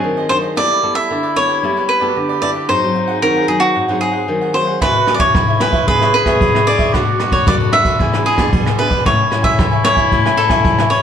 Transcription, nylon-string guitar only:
Already playing: F#3 C4 D4
0.04 D#3
0.29 F#3 C4 D4
0.57 G3 B3 E4 A4
0.83 B3 E4 A4
1.10 D3
1.36 B3 E4 A4
1.63 G3 B3 E4 A4
2.01 B3 E4 A4
2.16 D3
2.42 B3 E4 A4
2.69 G#2 F#3 C4 D#4
2.83 F#3 C4 D#4
3.22 D#3 F#3 C4 D#4
3.48 F#3 C4 D#4
3.75 G#2
3.89 F#3 C4 D#4
4.28 D#3 F#3 C4 D#4
4.54 F#3 C4 D#4
4.81 C#3 B3 E4 G#4
5.07 B3 E4 G#4
5.34 G#2
5.60 B3 E4 G#4
5.88 C#3 B3 E4 G#4
6.25 B3 E4 G#4
6.40 G#2
6.66 B3 E4 G#4
6.94 B2 A3 D4 F#4
7.19 A3 D4 F#4
7.46 F#2
7.72 A3 D4 F#4
7.99 E3 B3 D4 G#4
8.37 B3 D4 G#4
8.53 B2
8.78 B3 D4 G#4
9.06 A2 G#3 C#4 E4
9.31 G#3 C#4 E4
9.58 E3
9.84 G#3 C#4 E4
10.11 A2 G#3 C#4 E4
10.50 C#4 E4
10.65 E3
10.91 G#3 C#4 E4

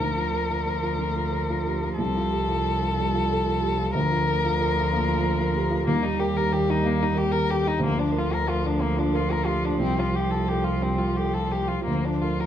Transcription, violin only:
Already playing: A#4
1.97 A4
3.95 A#4
5.87 A#3
6.03 D#4
6.19 G4
6.37 A#4
6.52 G4
6.70 D#4
6.86 A#3
7.03 D#4
7.18 G4
7.32 A#4
7.51 G4
7.68 D#4
7.84 A#3
7.99 D4
8.18 F4
8.34 A#4
8.49 F4
8.67 D4
8.81 A#3
8.99 D4
9.16 F4
9.32 A#4
9.46 F4
9.65 D4
9.81 C4
9.99 F4
10.16 G4
10.31 A4
10.48 G4
10.64 F4
10.83 C4
10.99 F4
11.17 G4
11.33 A4
11.52 G4
11.68 F4
11.85 A#3
12.05 D4
12.22 F4
12.41 A#4

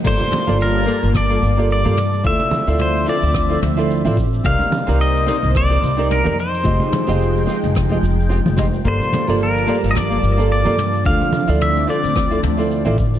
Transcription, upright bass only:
0.05 G1
0.48 G1
1.03 G1
1.43 G1
1.85 G2
2.25 D2
2.68 D2
3.23 D2
3.62 D2
4.06 A1
4.45 C2
4.88 C2
5.43 C2
5.82 C2
6.26 F2
6.65 F1
7.08 F1
7.64 F1
8.03 F1
8.46 F1
8.85 G1
9.29 G1
9.83 G1
10.23 G1
10.66 G2
11.06 D2
11.49 D2
12.04 D2
12.43 D2
12.86 A1

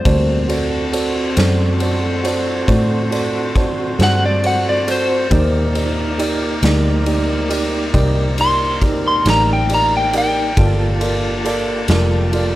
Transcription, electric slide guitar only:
Already playing: C5
4.03 F#5
4.26 D5
4.46 F#5
4.69 D5
4.91 C5
8.41 C6
9.08 C6
9.30 A#5
9.53 G5
9.74 A#5
9.97 G5
10.18 G5

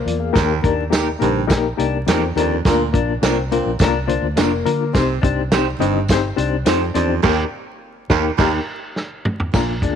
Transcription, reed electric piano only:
0.05 F4 D5
0.20 G#4 F5
0.33 A#3 D#4 G4 A#4
0.63 A#3 D#4 G4 A#4
0.90 A#3 D#4 G4 A#4
1.19 A#3 D#4 G4 A#4
1.48 A#3 D#4 G4 A#4
1.77 A#3 D#4 G4 A#4
2.06 A#3 D#4 G4 A#4
2.36 A#3 D#4 G4 A#4
2.65 A#3 D4 F4 A#4
2.93 A#3 D4 F4 A#4
3.22 A#3 D4 F4 A#4
3.52 A#3 D4 F4 A#4
3.81 A#3 D4 F4 A#4
4.08 A#3 D4 F4 C5
4.36 A#3 D4 F4 A#4
4.65 A#3 D4 F4 A#4
4.93 C4 D#4 G4 C5
5.23 C4 D#4 G4 C5
5.52 C4 D#4 G4 C5
5.80 C4 D#4 G4 D#5
6.10 C4 D#4 G4 C5
6.36 C4 D#4 G4 C5
6.66 C4 D#4 G4 C5
6.95 C4 D#4 G4 C5
7.24 A#3 D#4 G4 A#4
8.10 A#3 D#4 G4 A#4
8.39 A#3 D#4 G4 A#4
9.55 A#3 D4 F4 A#4
9.83 A#3 D4 F4 G#4

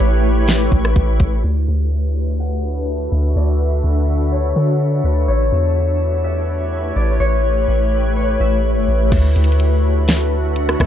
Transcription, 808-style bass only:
0.00 A1
0.72 A1
0.96 A1
1.20 A1
1.44 D2
1.68 D2
3.12 D2
3.36 D2
3.84 D2
4.56 D3
5.04 D2
5.28 A1
5.52 E2
6.96 A1
7.20 A1
7.68 A1
8.40 A1
8.76 G1
8.88 A1
9.12 D2
9.36 D2
10.80 D2

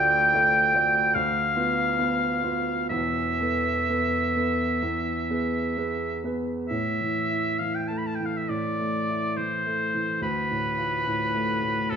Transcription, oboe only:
Already playing: G5
1.15 F5
2.89 E5
6.69 E5
7.59 F5
7.75 G5
7.88 A5
7.97 B5
8.06 A5
8.15 G5
8.25 F5
8.37 E5
8.49 D5
9.36 C5
10.22 B4
11.90 A4

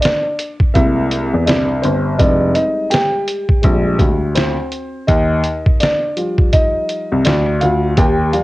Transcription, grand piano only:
0.76 C2
1.34 E2
1.48 C2
1.84 G1
2.19 F1
3.64 A#1
3.99 D2
5.09 D#2
7.12 C2
7.26 D2
7.63 D2
7.98 D#2

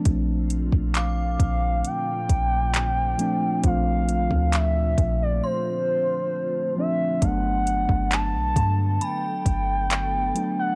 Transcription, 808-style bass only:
0.06 A#1
0.73 A#1
1.40 A#1
2.30 A#1
3.64 A#1
4.31 D2
4.98 A#1
7.22 G1
7.89 G1
8.34 B1
8.56 G2
9.46 G1

